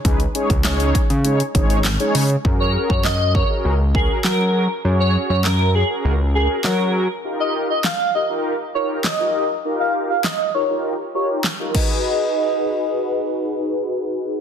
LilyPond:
<<
  \new Staff \with { instrumentName = "Digital synth lead" } { \time 4/4 \key fis \major \tempo 4 = 100 r1 | r16 cis''16 r16 cis''16 dis''8 cis''16 r8. gis'16 r16 ais'8. r16 | r16 cis''16 r16 cis''16 ais'8 gis'16 r8. gis'16 r16 ais'8. r16 | r16 dis''16 r16 dis''16 eis''8 dis''16 r8. cis''16 r16 dis''8. r16 |
r16 eis''16 r16 eis''16 dis''8 cis''16 r8. cis''16 r8. dis''8~ | dis''2. r4 | }
  \new Staff \with { instrumentName = "Analog polysynth" } { \time 4/4 \key fis \major <gis cis' dis' gis' b'>16 r16 <gis cis' dis' gis' cis''>16 r16 <gis cis' dis' gis' cis''>8 r8 <gis cis' dis' gis' cis''>16 r16 <gis cis' dis' gis' cis''>8 r16 <gis cis' dis' gis' cis''>8 r16 | <cis' fis' gis' ais'>8. r8. <cis' fis' gis' ais'>16 <cis' fis' gis' ais'>8 r16 <cis' fis' gis' ais'>8 r16 <cis' fis' gis' ais'>8 r16 | <cis' fis' gis' cis''>8. r8. <cis' fis' gis' cis''>16 <cis' fis' gis' ais'>8 r16 <cis' fis' gis' ais'>8 r16 <cis' fis' gis' ais'>8 r16 | <dis' eis' g' ais'>8. r8. <dis' eis' g' ais'>16 <dis' eis' g' ais'>8 r16 <dis' eis' g' ais'>8 r16 <dis' eis' g' ais'>8 r16 |
<dis' eis' g' ais'>8. r8. <dis' eis' g' ais'>16 <dis' eis' g' ais'>8 r16 <dis' eis' g' ais'>8 r16 <dis' eis' g' ais'>16 <dis' fis' gis' b'>8~ | <dis' fis' gis' b'>1 | }
  \new Staff \with { instrumentName = "Analog synth bass" } { \clef bass \time 4/4 \key fis \major cis,8 r16 cis,4 cis8. gis,,4 cis8 | fis,8. fis,4~ fis,16 cis,4 fis4 | fis,8. fis,4~ fis,16 cis,4 fis4 | r1 |
r1 | r1 | }
  \new DrumStaff \with { instrumentName = "Drums" } \drummode { \time 4/4 <hh bd>16 hh16 hh16 <hh bd>16 <hc hh sn>16 hh16 <hh bd>16 hh16 hh16 hh16 <hh bd>16 hh16 <hc hh sn>16 hh16 hho16 hh16 | bd8. bd16 <hc sn>8 bd8 r8 bd8 <hc sn>4 | r4 <hc sn>4 r4 <hc sn>4 | r4 <hc sn>4 r4 <hc sn>4 |
r4 <hc sn>4 r4 <hc sn>8 <cymc bd>8 | r4 r4 r4 r4 | }
>>